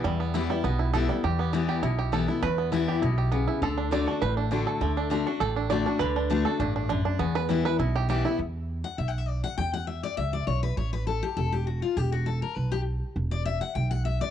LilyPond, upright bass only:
\new Staff \with { instrumentName = "Upright bass" } { \clef bass \time 4/4 \key e \dorian \tempo 4 = 201 e,2 b,,2 | e,2 b,,2 | e,2 b,,2 | d,2 a,,2 |
d,2 a,,2 | d,2 a,,2 | e,2 b,,2 | e,2 b,,2 |
e,2 cis,4 b,,4 | a,,2 e,,2 | e,,2 b,,2 | e,,2 b,,2 | }